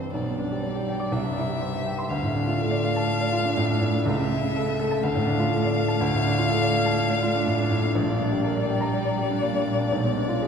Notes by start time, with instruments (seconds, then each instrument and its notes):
Already playing: grand piano C2 G2 G4 C5 E5 G5 E6, cello E3
0.00 grand piano C4
0.13 grand piano B1, cello G3, violin D5
0.26 grand piano B2
0.39 grand piano D4
0.51 grand piano G4
0.63 grand piano D5
0.75 grand piano G4
0.88 grand piano G5
1.00 grand piano D6
1.12 grand piano C2, violin E5
1.24 grand piano G2
1.37 grand piano E4
1.49 grand piano G4
1.61 grand piano C5
1.74 grand piano E5
1.86 grand piano G5
1.99 grand piano C6
2.10 grand piano D2, cello A3, violin F5
2.23 grand piano A2
2.36 grand piano D4
2.48 grand piano F4
2.59 grand piano A4
2.71 grand piano D5
2.84 grand piano F5
2.96 grand piano A5
3.08 grand piano F5
3.21 grand piano D5
3.32 grand piano F4
3.44 grand piano D4
3.57 grand piano A2
3.70 grand piano D4
3.81 grand piano A2
3.94 grand piano D4
4.06 grand piano C#2, violin E5
4.18 grand piano C#3
4.31 grand piano E4
4.43 grand piano C#3
4.56 grand piano A4
4.67 grand piano E5
4.79 grand piano A4
4.91 grand piano A5
5.03 grand piano D2, violin F5
5.15 grand piano A2
5.27 grand piano D4
5.39 grand piano F4
5.52 grand piano A4
5.64 grand piano D5
5.77 grand piano F5
5.88 grand piano A5
6.01 grand piano D2, cello A3
6.13 grand piano A2
6.26 grand piano D4
6.38 grand piano F4
6.50 grand piano A4
6.62 grand piano D5
6.74 grand piano F5
6.86 grand piano A5
6.99 grand piano F5
7.11 grand piano D5
7.23 grand piano F4
7.35 grand piano D4
7.47 grand piano A2
7.59 grand piano D4
7.71 grand piano A2
7.84 grand piano D4
7.95 grand piano A#1, cello G3, violin D5
8.07 grand piano A#2
8.20 grand piano D4
8.31 grand piano G4
8.44 grand piano A#4
8.55 grand piano D5
8.68 grand piano G5
8.81 grand piano A#5
8.93 grand piano G5
9.05 grand piano D5
9.18 grand piano G4
9.31 grand piano D4
9.42 grand piano A#2
9.54 grand piano D4
9.67 grand piano A#2
9.80 grand piano D4
9.92 grand piano B1, cello G#3
10.04 grand piano B2
10.16 grand piano D4
10.28 grand piano F4
10.41 grand piano G#4